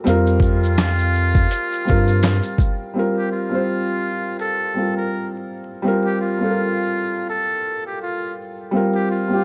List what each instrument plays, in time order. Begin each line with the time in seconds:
0.04 analog synth bass F2, felt piano G3 C4 F4, closed hi-hat, shaker
0.09 felt piano A#4
0.27 shaker
0.40 muted trumpet F4, kick, shaker
0.63 shaker
0.78 snare, clap, closed hi-hat, shaker
0.98 shaker
1.14 shaker
1.35 kick, shaker
1.51 closed hi-hat, shaker
1.72 shaker
1.85 felt piano G3 C4 F4, shaker
1.90 analog synth bass G2, felt piano A#4, kick
2.07 shaker
2.23 snare, clap, closed hi-hat, shaker
2.43 shaker
2.58 kick, shaker
2.94 felt piano G3 C4 F4
2.99 felt piano A#4
3.16 muted trumpet G4
3.32 muted trumpet F4
3.49 felt piano G3 C4 F4
3.55 felt piano C5
4.40 muted trumpet A4
4.74 felt piano G3 C4 F4
4.80 felt piano A#4
4.97 muted trumpet A#4
5.82 felt piano G3 C4 F4
5.88 felt piano A#4
6.05 muted trumpet G4
6.21 muted trumpet F4
6.38 felt piano G3 C4 F4
6.44 felt piano A4
6.50 felt piano A#4
7.29 muted trumpet A4
7.86 muted trumpet G4
8.02 muted trumpet F4
8.71 felt piano G3 C4 F4
8.77 felt piano A#4
8.95 muted trumpet G4
9.11 muted trumpet F4
9.28 felt piano G3 C4 F4
9.33 felt piano G4